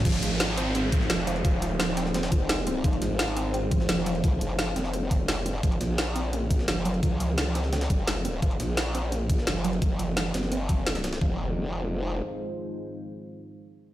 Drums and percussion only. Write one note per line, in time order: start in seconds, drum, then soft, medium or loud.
0.05 kick loud
0.05 closed hi-hat medium
0.05 crash medium
0.14 closed hi-hat soft
0.23 snare medium
0.23 closed hi-hat medium
0.23 closed hi-hat loud
0.40 snare loud
0.40 closed hi-hat medium
0.49 closed hi-hat soft
0.57 closed hi-hat medium
0.57 closed hi-hat loud
0.75 closed hi-hat medium
0.92 kick loud
0.92 closed hi-hat medium
0.92 closed hi-hat loud
1.01 snare soft
1.10 snare loud
1.10 closed hi-hat medium
1.27 closed hi-hat medium
1.27 closed hi-hat loud
1.36 closed hi-hat soft
1.45 kick loud
1.45 closed hi-hat medium
1.62 closed hi-hat medium
1.80 snare loud
1.80 closed hi-hat medium
1.97 snare medium
1.97 closed hi-hat medium
2.06 snare soft
2.14 snare loud
2.14 closed hi-hat medium
2.23 snare loud
2.23 closed hi-hat medium
2.32 kick loud
2.32 closed hi-hat loud
2.32 closed hi-hat medium
2.49 snare loud
2.49 closed hi-hat medium
2.49 open hi-hat medium
2.67 closed hi-hat loud
2.67 closed hi-hat medium
2.84 kick loud
2.84 closed hi-hat medium
2.93 closed hi-hat soft
3.02 snare medium
3.02 closed hi-hat medium
3.19 snare loud
3.19 closed hi-hat medium
3.28 closed hi-hat soft
3.37 closed hi-hat medium
3.54 closed hi-hat medium
3.71 kick loud
3.71 closed hi-hat medium
3.80 snare soft
3.89 snare loud
3.89 closed hi-hat medium
4.06 closed hi-hat medium
4.15 closed hi-hat soft
4.24 kick loud
4.24 closed hi-hat medium
4.41 closed hi-hat medium
4.59 snare loud
4.59 closed hi-hat medium
4.76 snare medium
4.76 closed hi-hat medium
4.85 snare soft
4.93 closed hi-hat medium
5.11 kick loud
5.11 closed hi-hat medium
5.28 snare loud
5.28 closed hi-hat medium
5.28 open hi-hat medium
5.46 closed hi-hat medium
5.63 kick loud
5.63 closed hi-hat medium
5.72 closed hi-hat soft
5.81 snare medium
5.81 closed hi-hat medium
5.98 snare loud
5.98 closed hi-hat medium
6.07 closed hi-hat soft
6.16 closed hi-hat medium
6.33 closed hi-hat medium
6.50 kick loud
6.50 closed hi-hat medium
6.59 snare soft
6.68 snare loud
6.68 closed hi-hat medium
6.85 closed hi-hat medium
6.94 closed hi-hat soft
7.03 kick loud
7.03 closed hi-hat medium
7.20 closed hi-hat medium
7.38 snare loud
7.38 closed hi-hat medium
7.55 snare medium
7.55 closed hi-hat medium
7.64 snare soft
7.73 snare loud
7.73 closed hi-hat medium
7.81 snare loud
7.81 closed hi-hat medium
7.90 kick loud
7.90 closed hi-hat medium
8.07 snare loud
8.07 closed hi-hat medium
8.07 open hi-hat medium
8.25 closed hi-hat medium
8.42 kick loud
8.42 closed hi-hat medium
8.51 closed hi-hat soft
8.60 snare medium
8.60 closed hi-hat medium
8.77 snare loud
8.77 closed hi-hat medium
8.86 closed hi-hat soft
8.95 closed hi-hat medium
9.12 closed hi-hat medium
9.30 kick loud
9.30 closed hi-hat medium
9.38 snare soft
9.47 snare loud
9.47 closed hi-hat medium
9.64 closed hi-hat medium
9.73 closed hi-hat soft
9.82 kick loud
9.82 closed hi-hat medium
9.99 closed hi-hat medium
9.99 closed hi-hat loud
10.17 snare loud
10.17 closed hi-hat medium
10.34 snare loud
10.34 closed hi-hat medium
10.43 snare soft
10.52 closed hi-hat medium
10.69 kick loud
10.69 closed hi-hat medium
10.86 snare loud
10.86 closed hi-hat medium
10.95 snare loud
10.95 closed hi-hat medium
11.04 snare loud
11.04 closed hi-hat medium
11.13 snare loud
11.13 closed hi-hat medium
11.21 kick loud